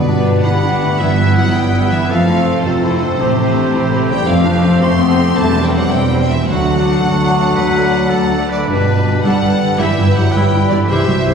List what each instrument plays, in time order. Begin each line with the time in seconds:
Already playing: double bass section G1, cello section G2, timpani G2, harp G2 D4 D5, french horn section B2, violin section B4, oboe D5
0.08 viola section B3 D4, harp B3, clarinet D4, violin section G4 B4
0.27 clarinet D4, harp D4
0.43 double bass section G1, cello section G2, french horn section G3, clarinet E4, oboe B4, harp B4, violin section F#5
0.62 harp B3, viola section B3 D4, clarinet D4, violin section G4 B4
0.82 harp D3, clarinet A3
0.99 double bass section G1, cello section G2, harp G2, french horn section E3, clarinet B3, viola section B3 E4, violin section G4 B4 E5, oboe B4
1.18 harp B3, viola section B3 E4, violin section G4 B4
1.36 french horn section F#3, harp E4, violin section F#5
1.54 double bass section G1, cello section G2, french horn section G3, harp B4, violin section G5
1.73 harp B3, viola section B3 E4, violin section G4 B4
1.89 french horn section E3, harp G3, violin section E5
2.09 double bass section F1, cello section F2, harp F2, french horn section F3, clarinet C4, oboe A4, violin section F5
2.27 viola section A3 C4, harp A3, violin section A4 C5
2.47 harp C4
2.64 double bass section F1, cello section F2, french horn section C3, clarinet F4, oboe A4, violin section C5, harp C5
2.82 viola section A3 C4, harp A3, clarinet E4, violin section A4 C5
3.01 harp C3, clarinet D4
3.18 double bass section A1, harp A2, cello section A2, viola section A3 C4, clarinet C4, oboe G4, violin section A4 C5
3.37 harp A3, viola section A3 C4, clarinet C4, violin section A4 C5
3.56 harp C4, clarinet D4
3.73 double bass section A1, cello section A2, clarinet E4, harp C5
3.91 viola section A3 C4, harp A3, violin section A4 C5
4.09 harp E3, french horn section G3, violin section G5
4.27 double bass section F1, cello section F2, harp F3, french horn section F3, clarinet C4, violin section F5
4.46 viola section A3 C4, harp C4, clarinet D4, violin section A4 C5
4.65 clarinet C4, harp C5
4.81 double bass section F1, cello section F2, clarinet A3, french horn section C4, harp A4, violin section C6
5.00 viola section A3 C4, clarinet B3, harp C4, violin section A4 C5
5.19 harp A3, clarinet C4
5.36 double bass section E1, cello section E2, harp E3, viola section G3 C4, french horn section A3, violin section E4 C5 A5
5.54 viola section G3 C4, harp C4, violin section E4 C5
5.64 french horn section G3, violin section G5
5.73 french horn section F#3, harp C5, violin section F#5
5.91 double bass section E1, cello section E2, french horn section G3, harp G4, violin section G5
6.10 viola section G3 C4, harp C4, violin section E4 C5
6.21 french horn section G3, violin section G5
6.30 french horn section E3, harp G3, violin section E5
6.47 double bass section D2, cello section D2, harp D3, french horn section F#3, clarinet D4, oboe F#4, violin section F#5
6.65 viola section A3 D4, harp D4, violin section F#4 A4
6.84 harp A4
7.02 double bass section D2, cello section D2, harp D4, oboe F#4
7.20 viola section A3 D4, harp A3, violin section F#4 A4
7.38 harp D4
7.56 cello section D2, double bass section D2, harp A3, oboe B4
7.75 viola section A3 D4, harp D4, violin section F#4 A4
7.93 harp A4
8.10 double bass section D2, cello section D2, harp D4, oboe A4
8.31 harp A3, viola section A3 D4, violin section F#4 A4
8.49 french horn section D3, harp D4, oboe B4, violin section D5
8.67 double bass section G1, harp G2, cello section G2, french horn section B2, viola section G3 D4, clarinet D4, violin section G4 B4, oboe B4
8.87 double bass section G1, cello section G2, viola section G3 D4, harp G3
9.05 double bass section G1, cello section G2, viola section G3 D4, harp D4
9.23 double bass section G1, cello section G2, viola section G3 D4, french horn section G3, clarinet D4, oboe A4, harp B4, violin section F#5
9.42 double bass section G1, cello section G2, viola section G3 D4, harp G3
9.61 harp D3
9.78 double bass section G1, cello section G2, harp G2, french horn section E3, viola section G3 E4, clarinet E4, oboe G4, violin section E5
9.97 double bass section G1, cello section G2, harp G3, viola section G3 E4
10.16 double bass section G1, cello section G2, french horn section F#3, viola section G3 E4, harp E4, violin section F#5
10.32 double bass section G1, cello section G2, french horn section G3, viola section G3 E4, clarinet E4, oboe B4, harp B4, violin section G5
10.52 double bass section G1, cello section G2, harp G3, viola section G3 E4
10.69 double bass section G1, cello section G2, french horn section D3, harp E3, viola section G3 E4, violin section D5
10.88 double bass section C2, cello section C2, harp C3, french horn section E3, viola section G3 E4, clarinet G4, oboe C5, violin section C5 E5
11.07 double bass section C2, cello section C2, harp G3, viola section G3 E4, clarinet F#4
11.25 double bass section C2, cello section C2, viola section G3 E4, harp E4, clarinet G4